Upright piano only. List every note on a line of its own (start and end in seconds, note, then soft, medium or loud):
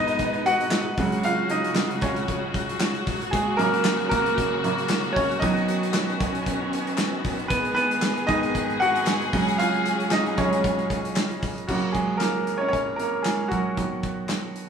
0.00 0.94 G#2 soft
0.00 0.94 D#3 soft
0.00 1.01 B3 medium
0.00 0.42 D#4 medium
0.00 1.00 B4 loud
0.00 0.47 D#5 loud
0.46 1.20 F#4 medium
0.46 1.27 F#5 loud
0.98 1.72 C#3 medium
0.98 1.73 F#3 soft
0.98 1.73 G#3 medium
1.24 1.49 F4 medium
1.24 1.49 F5 medium
1.50 1.99 D#4 medium
1.50 2.04 D#5 medium
2.02 3.03 C#4 medium
2.02 3.03 C#5 medium
3.31 3.57 G#3 medium
3.31 3.59 G#4 medium
3.57 3.94 F#2 medium
3.57 3.95 C#3 soft
3.57 3.95 A#3 medium
3.57 4.08 A#4 medium
4.09 4.63 A#3 medium
4.09 5.18 A#4 medium
4.64 4.87 F#2 soft
4.64 4.87 C#3 soft
4.64 4.88 A#3 soft
5.13 5.38 C#5 medium
5.17 5.41 C#4 medium
5.39 5.78 B2 soft
5.39 5.78 D#3 soft
5.39 5.78 F#3 medium
5.39 6.43 D#4 medium
5.39 6.41 D#5 medium
7.48 7.75 B3 medium
7.48 7.73 B4 medium
7.75 8.25 B3 medium
7.75 8.30 B4 loud
8.27 9.29 G#2 medium
8.27 9.29 D#3 medium
8.27 9.29 B3 medium
8.27 8.77 D#4 medium
8.27 8.76 D#5 loud
8.80 9.56 F#4 medium
8.80 9.61 F#5 loud
9.33 9.69 C#3 medium
9.33 9.70 F#3 soft
9.33 9.70 G#3 medium
9.58 10.08 F4 medium
9.58 10.13 F5 medium
10.12 10.37 D#4 medium
10.12 10.36 D#5 medium
10.38 10.61 C#3 soft
10.38 10.62 F#3 soft
10.38 10.62 G#3 medium
10.38 11.13 C#4 medium
10.38 11.12 C#5 medium
11.68 13.74 F#2 soft
11.68 13.74 C#3 soft
11.68 11.94 F#3 medium
11.68 12.19 A#3 soft
11.68 11.92 F#4 medium
11.92 12.19 G#3 medium
11.92 12.18 G#4 medium
12.17 12.59 A#3 medium
12.17 12.57 A#4 medium
12.58 12.71 C#4 medium
12.58 12.67 C#5 medium
12.68 12.98 C#5 medium
12.73 12.97 C#4 medium
12.96 13.24 A#3 medium
12.96 13.22 A#4 medium
13.22 13.51 G#4 medium
13.27 13.50 G#3 medium
13.48 13.77 F#3 medium
13.48 14.24 F#4 medium
13.77 14.52 B2 soft
13.77 14.52 D#3 soft
13.77 14.52 F#3 soft